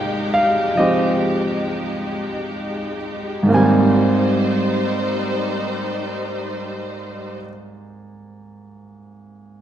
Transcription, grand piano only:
0.00 3.41 G#2 soft
0.00 3.49 C3 soft
0.00 3.44 D#3 soft
0.00 3.47 A#3 soft
0.00 0.79 G4 medium
0.00 3.50 C#5 medium
0.00 0.34 F5 medium
0.00 0.30 G5 medium
0.34 0.76 F5 medium
0.75 3.48 F3 soft
0.75 3.50 G#3 soft
0.75 3.49 C4 soft
0.75 3.50 D#4 soft
0.75 2.96 D#5 medium
0.79 3.46 G4 medium
0.79 3.46 C5 medium
3.43 7.35 G#2 medium
3.43 7.38 D#3 medium
3.49 7.41 A#3 medium
3.49 7.44 C4 medium
3.54 7.47 G3 medium
3.54 7.42 G#5 medium

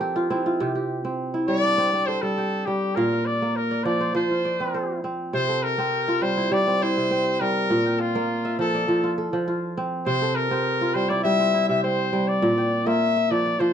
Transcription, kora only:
0.00 0.65 F3 medium
0.00 0.30 C4 medium
0.00 0.60 G4 medium
0.00 1.18 A4 medium
0.00 0.98 A#4 medium
0.00 0.75 C5 medium
0.00 0.52 D5 medium
0.16 0.46 F4 medium
0.30 1.04 C4 medium
0.30 1.33 E4 medium
0.46 1.40 F4 medium
0.60 2.94 C3 medium
0.60 0.75 G4 medium
0.75 2.17 G4 medium
1.05 1.77 C4 medium
1.34 2.91 E4 medium
1.48 2.21 G3 medium
1.64 3.31 D4 medium
1.78 1.93 C4 medium
1.93 3.73 C4 medium
2.08 3.03 A4 medium
2.23 2.66 G3 medium
2.38 3.79 G4 medium
2.67 3.02 G3 medium
2.97 4.20 A#2 medium
2.97 3.12 F5 medium
3.12 4.12 F5 medium
3.42 5.35 A#3 medium
3.71 4.45 D5 medium
3.85 4.13 F3 medium
4.01 4.74 C5 medium
4.15 5.39 F3 medium
4.31 5.82 F4 soft
4.45 5.56 D5 medium
4.60 5.04 C4 medium
4.74 5.93 C5 medium
5.04 5.78 C4 medium
5.33 6.96 C3 medium
5.49 6.80 A4 medium
5.78 6.67 C4 medium
5.78 7.19 G4 medium
6.08 6.88 F4 medium
6.22 6.50 G3 medium
6.37 6.82 E4 medium
6.51 7.40 G3 medium
6.67 7.10 C4 medium
6.82 8.21 E4 medium
6.97 7.75 C3 medium
7.11 8.91 C4 medium
7.41 7.75 G3 medium
7.70 8.94 A#2 medium
7.86 8.79 G5 medium
8.15 9.24 A#3 medium
8.15 9.15 F5 medium
8.45 8.94 E5 medium
8.59 8.87 F3 medium
8.75 9.85 D5 medium
8.88 9.32 F3 medium
9.04 9.47 F4 medium
9.18 10.21 A4 medium
9.33 10.12 F3 medium
9.48 10.81 F4 medium
9.77 10.51 C4 medium
10.06 11.68 C3 medium
10.22 11.54 A4 medium
10.51 11.39 C4 medium
10.51 11.92 G4 medium
10.81 11.60 F4 medium
10.95 11.24 G3 medium
11.10 11.54 E4 medium
11.25 12.12 G3 medium
11.40 11.83 C4 medium
11.54 12.93 E4 medium
11.69 12.47 C3 medium
11.84 13.64 C4 medium
12.13 12.47 G3 medium
12.42 13.65 A#2 medium
12.58 13.51 G5 medium
12.86 13.73 A#3 medium
12.86 13.73 F4 medium
13.16 13.66 E5 medium
13.31 13.59 F3 medium
13.46 13.73 D5 medium
13.60 13.73 F3 medium

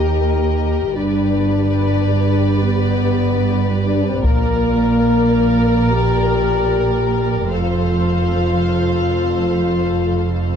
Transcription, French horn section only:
0.00 0.97 G4 medium
0.96 2.61 D4 medium
2.62 3.67 B3 medium
3.84 4.04 D4 medium
4.04 4.24 C4 medium
4.22 5.87 A#3 medium
5.89 7.53 G4 medium
7.54 10.28 F4 medium
10.45 10.56 C4 soft

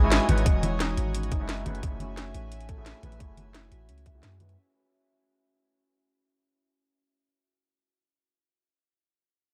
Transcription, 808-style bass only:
0.00 0.19 G#1 medium
0.29 0.44 G#1 medium
0.46 0.96 E1 loud
0.97 1.31 G#1 medium
1.32 1.65 F#1 medium
1.66 1.81 F#1 loud
1.83 2.33 F#1 loud
2.35 2.93 A1 medium
3.03 3.19 A1 medium
3.20 3.70 F#1 medium
3.72 3.90 A1 medium
3.89 4.22 C#2 medium
4.23 4.56 F#2 medium

